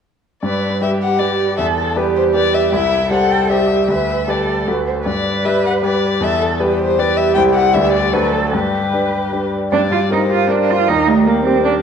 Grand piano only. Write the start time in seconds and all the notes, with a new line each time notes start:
0.43 G2
0.81 G3 G4 B4
1.20 G3 G4 B4
1.59 E2
1.96 G3 G4 B4
2.34 G3 G4 B4
2.72 C2
3.10 G3 G4 C5
3.49 G3 G4 C5
3.88 D2
4.28 G3 G4 B4
4.67 D2 A3 F#4 A4
5.06 G2
5.45 G3 G4 B4
5.82 G3 G4 B4
6.20 E2
6.59 G3 G4 B4
6.98 G3 G4 B4
7.36 C2 G3 E4 C5
7.74 D2 G3 D4 B4
8.13 D2 F#3 D4 C5
8.53 G2
8.93 G3 D4 B4
9.33 G3 D4 B4
9.72 G2
9.91 G3
10.10 A#4
10.30 G4
10.49 A#4
10.69 D4
10.89 D#2
11.08 G3
11.27 A#4
11.47 G4
11.67 A#4